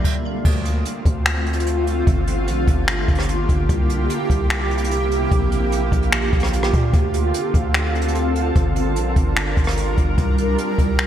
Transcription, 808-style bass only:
0.45 0.84 D2 loud
1.05 2.03 D2 loud
2.07 2.49 G1 loud
2.47 2.67 A#1 loud
2.68 3.07 G1 loud
3.08 3.47 G1 loud
3.49 3.69 G1 loud
3.69 4.08 C2 loud
4.30 5.27 C2 loud
5.31 5.90 A#1 loud
5.92 6.31 A#1 loud
6.33 6.72 A#1 loud
6.73 6.93 A#2 loud
6.94 7.33 D2 loud
7.54 8.52 D2 loud
8.56 8.98 G1 loud
8.96 9.16 A#1 loud
9.16 9.55 G1 loud
9.57 9.96 G1 loud
9.98 10.17 G1 loud
10.18 10.57 C2 loud
10.78 11.07 C2 loud

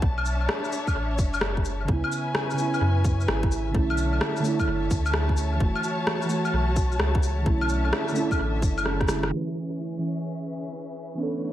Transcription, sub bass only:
0.02 0.48 B1 medium
0.95 1.20 A1 medium
1.18 1.87 F#1 medium
1.88 2.02 C#2 loud
2.81 3.26 F#2 loud
3.28 3.73 G#1 medium
3.74 4.20 B1 medium
4.67 4.89 F#1 medium
4.91 5.59 D2 medium
5.60 5.74 F#1 loud
6.53 6.99 B1 loud
7.00 7.45 C#2 medium
7.46 7.92 B1 medium
8.39 8.64 A1 medium
8.62 9.31 F#1 medium

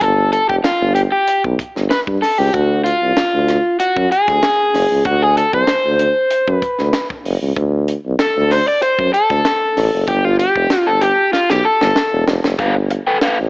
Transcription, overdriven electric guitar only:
0.02 0.31 A4 loud
0.33 0.49 A4 medium
0.49 0.54 G4 medium
0.64 0.95 F4 medium
0.95 1.00 G4 medium
1.12 1.42 G4 medium
1.90 1.99 B4 medium
2.22 2.38 A4 medium
2.38 2.53 G4 medium
2.53 2.84 F#4 medium
2.84 3.79 F4 medium
3.80 4.11 F#4 medium
4.12 5.06 G#4 medium
5.06 5.22 F#4 medium
5.22 5.37 G#4 medium
5.38 5.54 A4 medium
5.54 6.52 C5 medium
6.52 7.07 B4 medium
8.20 8.52 A4 loud
8.52 8.68 C5 loud
8.68 8.82 D5 loud
8.83 9.13 C5 loud
9.14 10.11 A4 medium
10.08 10.25 G4 loud
10.25 10.39 F4 medium
10.39 10.89 G4 medium
10.87 11.02 A4 medium
11.01 11.33 G4 medium
11.33 11.50 F4 medium
11.50 11.65 G4 medium
11.65 12.24 A4 medium
12.59 12.73 A4 medium
12.59 12.73 B4 medium
12.59 12.74 F5 loud
12.76 muted overdriven electric guitar stroke soft
12.90 muted overdriven electric guitar stroke soft
13.07 13.17 A4 medium
13.07 13.17 B4 medium
13.07 13.17 G5 medium
13.22 13.36 A4 medium
13.22 13.36 B4 medium
13.22 13.37 F5 medium

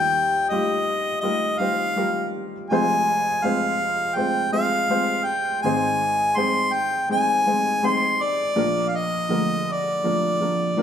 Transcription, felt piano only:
0.00 2.67 D#2 soft
0.00 2.67 D#3 soft
0.00 0.32 G3 medium
0.00 0.32 D#4 medium
0.00 0.33 F4 medium
0.00 0.33 A#4 medium
0.51 1.06 G3 medium
0.51 1.06 D#4 soft
0.51 1.07 F4 soft
0.51 1.07 G4 medium
1.23 1.51 G3 soft
1.23 1.51 D#4 soft
1.23 1.51 F4 soft
1.23 1.52 A#4 medium
1.60 1.88 G3 soft
1.60 1.88 D#4 soft
1.60 1.88 F4 soft
1.60 1.89 C5 soft
1.96 2.52 G3 medium
1.96 2.52 D#4 soft
1.96 2.53 F4 medium
1.96 2.53 A#4 medium
2.71 5.61 F1 soft
2.71 5.61 F2 soft
2.71 3.26 G#3 medium
2.71 3.26 C4 medium
2.71 3.26 F4 medium
2.71 3.27 C5 medium
3.43 3.99 G#3 medium
3.43 4.00 C4 soft
3.43 4.00 F4 soft
3.43 4.00 C5 medium
4.16 4.44 G#3 soft
4.16 4.44 C4 soft
4.16 4.45 F4 soft
4.16 4.45 C5 medium
4.52 4.81 G#3 soft
4.52 4.81 C4 soft
4.52 4.82 F4 soft
4.52 4.82 C5 soft
4.89 5.45 G#3 medium
4.89 5.46 C4 soft
4.89 5.46 F4 medium
4.89 5.46 C5 medium
5.64 8.54 G#1 soft
5.64 8.54 G#2 soft
5.64 6.19 G#3 medium
5.64 6.20 C4 medium
5.64 6.20 D#4 medium
5.64 6.20 C5 medium
6.36 6.92 G#3 medium
6.36 6.93 C4 soft
6.36 6.93 D#4 soft
6.36 6.93 C5 medium
7.09 7.38 G#3 soft
7.09 7.38 C4 soft
7.09 7.38 D#4 soft
7.09 7.39 D#5 medium
7.47 7.75 G#3 soft
7.47 7.75 C4 soft
7.47 7.75 D#4 soft
7.47 7.75 C5 soft
7.83 8.39 G#3 medium
7.83 8.39 C4 medium
7.83 8.40 D#4 soft
7.83 8.40 C5 medium
8.56 10.83 A#1 soft
8.56 10.83 A#2 soft
8.56 9.12 F3 medium
8.56 9.13 A#3 medium
8.56 9.13 D4 medium
8.56 9.13 A#4 medium
9.29 9.86 D3 medium
9.29 9.86 F3 soft
9.29 9.86 A#3 soft
9.29 9.86 A#4 medium
10.04 10.32 F3 soft
10.04 10.32 A#3 soft
10.04 10.33 D4 soft
10.04 10.33 A#4 medium
10.40 10.69 F3 soft
10.40 10.69 A#3 soft
10.40 10.69 D4 soft
10.40 10.70 A#4 soft
10.77 10.83 F3 medium
10.77 10.83 A#3 medium
10.77 10.83 D4 medium
10.77 10.83 A#4 medium

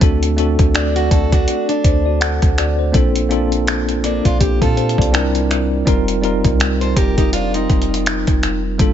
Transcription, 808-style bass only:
0.02 0.57 D2 loud
0.59 1.09 D2 medium
1.11 1.46 D2 loud
1.85 2.40 D2 loud
2.43 2.92 D2 loud
2.94 4.21 A#1 loud
4.25 4.63 A#1 loud
4.62 4.97 A#2 loud
4.98 5.83 C2 medium
5.87 6.43 F1 loud
6.45 6.95 C2 loud
6.97 7.67 F1 loud
7.70 8.25 F1 loud
8.28 8.78 F1 loud
8.80 8.93 G1 loud

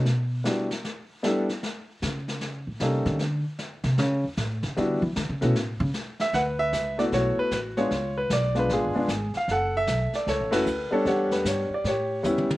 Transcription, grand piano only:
0.44 0.68 G3 medium
0.44 0.68 B3 soft
0.44 0.68 D4 soft
0.44 0.68 E4 soft
0.44 0.68 F#4 soft
1.23 1.46 G3 medium
1.23 1.46 B3 medium
1.23 1.47 D4 medium
1.23 1.47 E4 medium
1.23 1.47 A4 medium
2.81 3.20 G3 medium
2.81 3.20 A#3 medium
2.81 3.20 C#4 soft
2.81 3.20 D#4 soft
2.81 3.21 A4 medium
4.77 5.00 G3 medium
4.77 5.00 B3 medium
4.77 5.00 D4 medium
4.77 5.00 E4 medium
4.77 5.01 F#4 medium
5.41 5.54 A3 medium
5.41 5.54 B3 medium
5.41 5.54 C#4 medium
5.41 5.54 E4 soft
5.41 5.55 F#4 medium
6.21 6.33 E5 loud
6.34 7.09 B4 medium
6.34 6.40 F#5 loud
6.59 6.96 E5 loud
6.98 7.48 A3 medium
6.98 7.49 B3 medium
6.98 7.49 E4 medium
6.98 7.12 F#4 medium
6.98 7.04 D5 medium
7.14 7.88 F#4 medium
7.14 7.37 C#5 medium
7.39 7.52 B4 medium
7.53 7.59 B4 medium
7.77 7.90 G#3 medium
7.77 7.90 B3 medium
7.77 7.90 D4 medium
7.77 8.52 F4 medium
7.77 7.90 G#4 medium
7.77 8.18 C#5 medium
8.18 8.30 B4 medium
8.33 8.55 D5 medium
8.55 8.92 G#3 medium
8.55 8.92 B3 soft
8.55 8.92 D4 medium
8.55 8.71 F4 medium
8.59 8.71 B4 medium
8.72 8.95 F4 medium
8.72 9.32 G#4 medium
8.94 9.07 G#3 medium
8.94 9.08 B3 medium
8.94 9.08 D4 medium
8.94 9.09 F4 medium
9.37 9.49 F5 medium
9.51 10.25 A4 medium
9.51 9.76 F#5 loud
9.77 10.16 E5 loud
10.15 10.27 D5 medium
10.28 10.91 A4 medium
10.28 10.54 C#5 medium
10.51 10.64 A3 medium
10.51 10.65 C#4 medium
10.51 10.65 E4 medium
10.51 10.65 F#4 medium
10.51 10.90 B4 medium
10.91 11.04 G3 medium
10.91 11.04 B3 medium
10.91 11.05 D4 medium
10.91 11.43 A4 medium
10.91 11.05 C#5 medium
11.05 11.65 G3 medium
11.05 11.65 B3 soft
11.05 11.66 D4 medium
11.05 11.81 G4 medium
11.05 11.33 C#5 medium
11.05 11.66 F#5 medium
11.33 11.45 B4 medium
11.48 11.73 C#5 medium
11.74 11.87 D5 medium
11.87 12.57 G4 medium
11.87 12.47 C#5 medium
12.23 12.47 G3 medium
12.23 12.47 B3 medium
12.23 12.48 C#4 medium
12.23 12.48 E4 medium

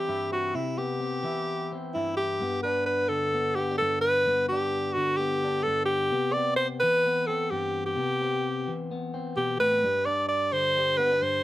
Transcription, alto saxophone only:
0.00 0.32 G4 medium
0.33 0.56 F#4 medium
0.55 0.79 E4 medium
0.78 1.77 G4 medium
1.94 2.16 E4 medium
2.17 2.60 G4 medium
2.63 2.85 B4 medium
2.86 3.10 B4 medium
3.08 3.57 A4 loud
3.55 3.77 G4 medium
3.78 4.01 A4 medium
4.01 4.46 B4 loud
4.48 4.95 G4 medium
4.93 5.18 F#4 loud
5.17 5.65 G4 loud
5.63 5.85 A4 loud
5.86 6.34 G4 loud
6.33 6.56 D5 loud
6.56 6.67 C5 loud
6.80 7.28 B4 loud
7.26 7.52 A4 loud
7.50 7.85 G4 medium
7.86 8.76 G4 medium
9.37 9.59 G4 medium
9.60 10.07 B4 loud
10.05 10.28 D5 medium
10.29 10.54 D5 loud
10.53 10.99 C5 loud
10.97 11.24 B4 loud
11.22 11.43 C5 loud

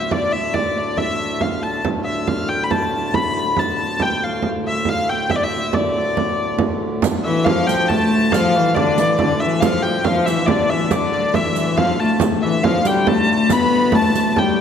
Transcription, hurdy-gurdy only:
0.00 0.12 E5 medium
0.12 0.33 D5 medium
0.32 0.54 E5 medium
0.54 0.77 D5 medium
0.77 0.98 D5 medium
0.98 1.41 E5 medium
1.41 1.63 F5 medium
1.63 1.83 A5 medium
2.05 2.27 E5 medium
2.27 2.49 F5 medium
2.49 2.63 G5 medium
2.63 2.71 B5 medium
2.71 3.14 A5 medium
3.14 3.59 B5 loud
3.59 4.02 A5 medium
4.02 4.24 G5 medium
4.24 4.44 F5 medium
4.68 4.89 E5 medium
4.89 5.09 F5 loud
5.09 5.31 G5 medium
5.31 5.37 E5 medium
5.36 5.43 D5 medium
5.43 5.74 E5 medium
5.74 6.56 D5 medium
7.24 7.45 E5 medium
7.45 7.67 F5 medium
7.67 7.89 G5 medium
7.89 8.32 A5 loud
8.32 8.74 F5 loud
8.74 9.19 D5 medium
9.19 9.40 D5 medium
9.40 9.62 E5 medium
9.60 9.83 F5 medium
9.82 10.05 G5 medium
10.04 10.26 F5 medium
10.26 10.46 E5 medium
10.46 10.69 D5 medium
10.69 10.91 E5 medium
10.91 11.13 D5 medium
11.13 11.34 D5 medium
11.34 11.78 E5 medium
11.77 12.00 F5 medium
12.00 12.21 A5 medium
12.42 12.63 E5 medium
12.63 12.86 F5 medium
12.86 13.08 G5 medium
13.08 13.52 A5 loud
13.52 13.95 B5 loud
13.95 14.38 A5 loud
14.38 14.60 G5 medium

